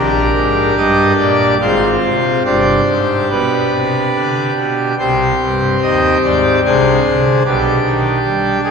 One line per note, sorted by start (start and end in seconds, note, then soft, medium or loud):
0.00 0.30 A#1 medium
0.00 0.30 A#2 medium
0.00 1.57 D4 medium
0.00 1.57 G4 medium
0.00 0.75 A#4 loud
0.36 0.71 G#2 medium
0.77 1.13 G2 medium
0.77 1.13 D#5 loud
1.19 1.55 A#2 medium
1.19 1.55 D5 medium
1.61 1.97 G#1 medium
1.61 1.97 G#2 medium
1.61 2.43 C4 soft
1.61 2.42 F4 soft
1.61 2.43 C5 loud
2.03 2.39 C3 medium
2.45 2.81 G1 medium
2.45 2.81 G2 medium
2.45 4.95 D4 soft
2.45 4.95 G4 soft
2.45 3.28 C5 medium
2.88 3.24 G#2 medium
3.30 3.67 B2 medium
3.30 4.53 B4 medium
3.73 4.09 C3 medium
4.15 4.51 D3 medium
4.57 4.93 B2 medium
4.98 5.34 C2 medium
4.98 5.34 C3 medium
4.98 6.60 C4 soft
4.98 6.60 G4 soft
4.98 5.80 C5 medium
5.41 5.76 G2 medium
5.82 6.17 D#2 medium
5.82 6.17 D#5 loud
6.24 6.59 G#2 medium
6.24 6.59 D5 medium
6.65 6.99 C2 medium
6.65 6.99 C3 medium
6.65 7.43 D4 soft
6.65 7.43 G#4 soft
6.65 7.43 C5 medium
7.05 7.39 D3 medium
7.45 7.79 B1 medium
7.45 7.79 B2 medium
7.45 8.71 D4 soft
7.45 8.60 G4 medium
7.85 8.18 D#3 medium
8.24 8.58 G3 medium
8.64 8.71 D#3 medium
8.64 8.71 G#4 medium